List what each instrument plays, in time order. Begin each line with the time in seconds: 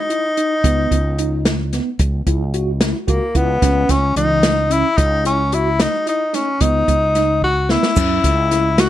0.00 tenor saxophone D#4
0.10 tine electric piano E4, closed hi-hat
0.37 tine electric piano D#4, closed hi-hat
0.64 fretless electric bass C#2, tine electric piano B3, kick, closed hi-hat
0.91 fretless electric bass C#2, kick, closed hi-hat
1.19 tine electric piano D#4, closed hi-hat
1.45 snare, closed hi-hat
1.73 tine electric piano B3, snare, closed hi-hat
1.99 fretless electric bass C#2, kick, closed hi-hat
2.27 fretless electric bass C#2, tine electric piano E4, kick, closed hi-hat
2.54 tine electric piano F#4, closed hi-hat
2.81 tine electric piano E4, snare, closed hi-hat
3.07 fretless electric bass C#2, tenor saxophone A#3, tine electric piano F#4, kick, closed hi-hat
3.35 fretless electric bass C#2, tenor saxophone B3, tine electric piano E4, kick, closed hi-hat
3.62 fretless electric bass C#2, tine electric piano C#4, kick, snare, closed hi-hat
3.89 fretless electric bass C#2, tenor saxophone C#4, kick, snare, closed hi-hat
4.16 fretless electric bass C#2, tine electric piano E3, tenor saxophone D#4, closed hi-hat
4.43 snare, closed hi-hat
4.70 tine electric piano C#4, tenor saxophone E4, closed hi-hat
4.97 fretless electric bass C#2, tenor saxophone D#4, kick, closed hi-hat
5.25 tenor saxophone C#4, tine electric piano E4, closed hi-hat
5.52 tenor saxophone E4, tine electric piano F#4, closed hi-hat
5.80 tine electric piano D#4, tenor saxophone D#4, snare, closed hi-hat
6.07 tenor saxophone D#4, tine electric piano E4, closed hi-hat
6.33 tenor saxophone C#4, tine electric piano D#4, snare, closed hi-hat
6.61 fretless electric bass C#2, tine electric piano B3, tenor saxophone D#4, kick, closed hi-hat
6.88 fretless electric bass C#2, kick, closed hi-hat
7.15 tine electric piano D#4, snare, closed hi-hat
7.42 tenor saxophone F#4, kick
7.69 tine electric piano B3, tenor saxophone E4, snare
7.83 snare
7.96 fretless electric bass F#2, tine electric piano C#4, kick, crash, shaker
8.24 fretless electric bass C#2, kick, snare, closed hi-hat
8.51 tine electric piano E4, snare, closed hi-hat
8.78 tine electric piano F#4, tenor saxophone F#4, snare, closed hi-hat